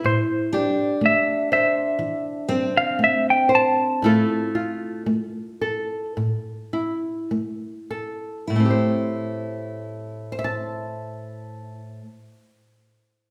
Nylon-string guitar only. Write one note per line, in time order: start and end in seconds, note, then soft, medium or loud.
0.00 0.53 E4 medium
0.04 0.92 A2 medium
0.54 3.96 G4 soft
1.01 1.90 A3 medium
1.52 3.49 C5 medium
1.99 2.89 E3 soft
2.49 4.04 C4 soft
2.99 3.91 A3 soft
3.49 4.05 C5 medium
4.02 4.97 A2 medium
4.02 5.05 A3 medium
4.02 6.72 E4 soft
4.02 4.54 F4 soft
4.02 5.60 A4 medium
4.55 8.42 F4 soft
5.06 6.05 A3 soft
5.61 7.89 A4 medium
6.17 7.18 A2 soft
6.73 8.42 E4 soft
7.31 8.37 A3 soft
7.91 8.70 A4 soft
8.50 12.00 A2 soft
8.56 12.06 A3 soft
8.60 10.32 C4 soft
8.65 10.38 G4 soft
8.70 10.32 C5 soft
10.32 13.30 C5 medium
10.39 13.30 E5 soft
10.44 13.30 A5 medium